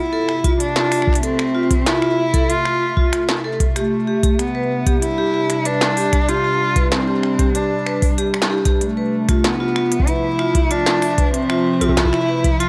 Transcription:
Already playing: C3 A3 E4 E5
0.13 A4
0.29 finger snap
0.44 F4, kick, closed hi-hat
0.60 D4, closed hi-hat
0.76 F4, snare
0.92 F4, finger snap, open hi-hat
1.02 finger snap
1.07 kick
1.13 finger snap, closed hi-hat
1.23 C4 A4, closed hi-hat
1.39 finger snap
1.55 F4
1.71 kick, closed hi-hat
1.86 E4 F4, snare, closed hi-hat
2.02 F4, finger snap
2.34 A4, kick, closed hi-hat
2.50 F4, closed hi-hat
2.65 F4, finger snap
2.97 F4, kick
3.13 F4, finger snap, closed hi-hat
3.29 snare
3.44 A4
3.60 kick, closed hi-hat
3.76 C3 A3 G4, finger snap, closed hi-hat
4.07 G3 G4
4.23 D4 G4, kick, closed hi-hat
4.39 B3, finger snap, closed hi-hat
4.55 B4
4.86 G4, kick, closed hi-hat
5.02 E4, closed hi-hat
5.18 G4
5.34 G4
5.50 finger snap, closed hi-hat
5.65 D4 B4, closed hi-hat
5.81 snare
5.97 G4, open hi-hat
6.13 finger snap, kick, closed hi-hat
6.29 F4 G4, closed hi-hat
6.44 G4
6.76 B4, kick, closed hi-hat
6.92 C4, snare
7.08 G4
7.23 finger snap
7.39 G4, kick, closed hi-hat
7.55 D4 G4, closed hi-hat
7.87 B4, finger snap
8.02 kick, open hi-hat
8.18 G4, closed hi-hat
8.34 finger snap
8.42 snare
8.50 G4
8.65 G4, kick, closed hi-hat
8.81 C3 A3, closed hi-hat
8.91 F3 A3
8.97 B4
9.06 E5
9.29 F4, finger snap, kick, closed hi-hat
9.44 B3, snare, closed hi-hat
9.60 F4
9.76 F4, finger snap
9.92 closed hi-hat
10.00 kick
10.07 E4 B4, closed hi-hat
10.39 F4, finger snap
10.55 kick, closed hi-hat
10.71 D4 F4, closed hi-hat
10.86 F4, snare
11.02 finger snap, open hi-hat
11.18 B4, kick, closed hi-hat
11.34 C4, closed hi-hat
11.50 F4, finger snap
11.81 F4, kick, closed hi-hat, high tom
11.89 kick, high tom
11.97 E4 F4, kick, snare, closed hi-hat, high tom
12.05 kick, high tom
12.13 finger snap
12.29 B4
12.44 kick, closed hi-hat
12.60 F4, closed hi-hat

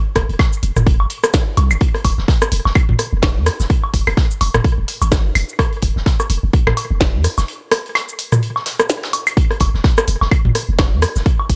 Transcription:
0.15 F1, kick, cross-stick, closed hi-hat, open hi-hat
0.29 F1, closed hi-hat
0.39 kick, snare, closed hi-hat, high woodblock, low woodblock
0.53 shaker
0.63 F1, closed hi-hat, open hi-hat
0.76 F1, cross-stick, mid tom, shaker
0.87 kick, closed hi-hat
1.00 G#1, low woodblock
1.10 closed hi-hat, open hi-hat
1.24 cross-stick, closed hi-hat, shaker
1.33 kick, snare, closed hi-hat, shaker
1.57 C2, closed hi-hat, open hi-hat, low woodblock
1.71 F1, high woodblock, shaker
1.80 kick, closed hi-hat
1.95 cross-stick, closed hi-hat
2.05 F1, kick, closed hi-hat, open hi-hat, low woodblock
2.18 F1, snare
2.28 kick, snare, closed hi-hat
2.42 cross-stick, shaker
2.52 F1, closed hi-hat, open hi-hat
2.65 F1, snare, low woodblock
2.75 kick, closed hi-hat, high woodblock
2.89 G#1, mid tom
2.98 cross-stick, closed hi-hat, open hi-hat
3.13 F1
3.22 kick, snare, closed hi-hat, low woodblock
3.36 F2
3.46 cross-stick, closed hi-hat, open hi-hat, shaker
3.60 F1, snare, shaker
3.70 kick, closed hi-hat
3.84 low woodblock
3.94 F1, kick, closed hi-hat, open hi-hat
4.07 F1, cross-stick, closed hi-hat, high woodblock
4.17 kick, snare, closed hi-hat
4.31 shaker
4.41 F1, closed hi-hat, open hi-hat, low woodblock
4.54 F1, cross-stick, mid tom, shaker
4.64 kick, closed hi-hat
4.78 D#1
4.88 closed hi-hat, open hi-hat
5.02 G#1, closed hi-hat, low woodblock, shaker
5.11 kick, cross-stick, snare, closed hi-hat, shaker
5.25 F1
5.35 F1, closed hi-hat, open hi-hat, high woodblock
5.49 shaker
5.59 kick, cross-stick, closed hi-hat, low woodblock
5.72 closed hi-hat
5.82 F1, kick, closed hi-hat, open hi-hat
5.96 F1, snare
6.06 kick, snare, closed hi-hat
6.20 cross-stick, low woodblock, shaker
6.30 F1, closed hi-hat, open hi-hat
6.43 F1
6.53 kick, closed hi-hat
6.67 G#1, cross-stick, mid tom, high woodblock
6.77 closed hi-hat, open hi-hat, low woodblock
6.91 F1
7.00 kick, snare, closed hi-hat
7.14 F2
7.24 cross-stick, closed hi-hat, open hi-hat, shaker
7.38 F1, snare, low woodblock, shaker
7.48 closed hi-hat
7.71 cross-stick, closed hi-hat, open hi-hat
7.86 closed hi-hat
7.95 snare, closed hi-hat, high woodblock, low woodblock
8.09 shaker
8.19 closed hi-hat, open hi-hat
8.32 cross-stick, mid tom, shaker
8.43 closed hi-hat
8.56 snare, low woodblock
8.66 snare, closed hi-hat, open hi-hat
8.79 cross-stick, shaker
8.89 snare, closed hi-hat, shaker
9.03 snare, closed hi-hat
9.13 open hi-hat, low woodblock
9.27 closed hi-hat, high woodblock, shaker
9.37 kick, closed hi-hat
9.51 cross-stick, closed hi-hat
9.60 F1, kick, closed hi-hat, open hi-hat, low woodblock
9.74 F1, snare
9.84 kick, snare, closed hi-hat
9.98 cross-stick, shaker
10.07 F1, closed hi-hat, open hi-hat
10.21 F1, snare, low woodblock
10.31 kick, closed hi-hat, high woodblock
10.45 G#1, mid tom
10.55 cross-stick, closed hi-hat, open hi-hat
10.69 F1
10.78 kick, snare, closed hi-hat, low woodblock
10.92 F2
11.02 cross-stick, closed hi-hat, open hi-hat, shaker
11.16 F1, snare, shaker
11.26 kick, closed hi-hat
11.40 low woodblock
11.49 F1, kick, closed hi-hat, open hi-hat

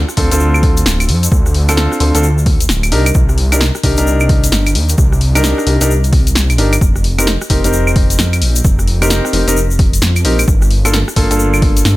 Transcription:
0.09 cross-stick, shaker
0.17 D2 C4 D4 F4 A4, kick, open hi-hat
0.31 D2 C4 D4 F4 A4, closed hi-hat, shaker
0.40 shaker
0.54 claves, shaker
0.63 kick, open hi-hat
0.77 closed hi-hat, shaker
0.86 D1, snare, closed hi-hat, shaker
1.00 closed hi-hat, claves, shaker
1.09 F2, open hi-hat
1.23 closed hi-hat, shaker
1.32 D2, kick
1.46 cross-stick, shaker
1.54 open hi-hat
1.69 C4 D4 F4 A4, cross-stick, closed hi-hat, claves, shaker
1.77 snare, shaker
1.92 cross-stick, shaker
2.00 D2 C4 D4 F4 A4, open hi-hat
2.15 D2 C4 D4 F4 A4, closed hi-hat, shaker
2.23 shaker
2.38 shaker
2.46 kick, open hi-hat
2.60 closed hi-hat, shaker
2.69 D1, snare, closed hi-hat, shaker
2.83 closed hi-hat, claves, shaker
2.92 C2 D4 D#4 G4 A#4, open hi-hat
3.06 closed hi-hat, claves, shaker
3.14 C2, kick, shaker
3.29 cross-stick, shaker
3.38 open hi-hat
3.52 D4 D#4 G4 A#4, cross-stick, closed hi-hat, claves, shaker
3.61 snare, shaker
3.75 cross-stick, shaker
3.83 C2 D4 D#4 G4 A#4, kick, open hi-hat
3.97 C2 D4 D#4 G4 A#4, closed hi-hat, shaker
4.07 shaker
4.20 claves, shaker
4.29 kick, open hi-hat
4.44 closed hi-hat, shaker
4.52 G1, snare, closed hi-hat, shaker
4.67 closed hi-hat, claves, shaker
4.75 D#2, open hi-hat
4.89 closed hi-hat, shaker
4.98 C2, kick, shaker
5.12 cross-stick, shaker
5.21 open hi-hat
5.35 D4 D#4 G4 A#4, cross-stick, closed hi-hat, claves, shaker
5.44 snare, shaker
5.58 cross-stick, shaker
5.67 C2 D4 D#4 G4 A#4, open hi-hat
5.81 C2 D4 D#4 G4 A#4, closed hi-hat, shaker
5.91 shaker
6.04 closed hi-hat, shaker
6.13 kick, open hi-hat
6.27 closed hi-hat, shaker
6.35 snare, closed hi-hat, shaker
6.50 A#1, closed hi-hat, claves, shaker
6.58 G1 D4 D#4 G4 A#4, open hi-hat
6.73 closed hi-hat, claves, shaker
6.81 F1, kick, shaker
6.96 cross-stick, shaker
7.04 open hi-hat
7.19 C4 D#4 G4 A#4, cross-stick, closed hi-hat, claves, shaker
7.27 snare, shaker
7.41 cross-stick, shaker
7.50 F1 C4 D#4 G4 A#4, kick, open hi-hat
7.64 F1 C4 D#4 G4 A#4, closed hi-hat, shaker
7.73 shaker
7.87 claves, shaker
7.96 kick, open hi-hat
8.10 closed hi-hat, shaker
8.18 F2, snare, closed hi-hat, shaker
8.33 closed hi-hat, claves, shaker
8.42 A#1, open hi-hat
8.56 closed hi-hat, shaker
8.64 F1, kick, shaker
8.79 cross-stick, shaker
8.87 open hi-hat
9.02 C4 D#4 G4 A#4, cross-stick, closed hi-hat, claves, shaker
9.10 snare, shaker
9.25 cross-stick, shaker
9.33 F1 C4 D#4 G4 A#4, open hi-hat
9.48 F1 C4 D#4 G4 A#4, closed hi-hat, shaker
9.56 shaker
9.71 shaker
9.79 kick, open hi-hat
9.93 closed hi-hat, shaker
10.02 F2, snare, closed hi-hat, shaker
10.16 closed hi-hat, claves, shaker
10.25 A#1 C4 D#4 G4 A#4, open hi-hat
10.39 closed hi-hat, claves, shaker
10.48 G1, kick, shaker
10.62 cross-stick, shaker
10.71 open hi-hat
10.85 A#3 D4 F4 A4, cross-stick, closed hi-hat, claves, shaker
10.93 snare, shaker
11.08 cross-stick, shaker
11.16 G1 A#3 D4 F4 A4, kick, open hi-hat
11.31 G1 A#3 D4 F4 A4, closed hi-hat, shaker
11.39 shaker
11.54 claves, shaker
11.62 kick, open hi-hat
11.77 closed hi-hat, shaker
11.85 G2, snare, closed hi-hat, shaker

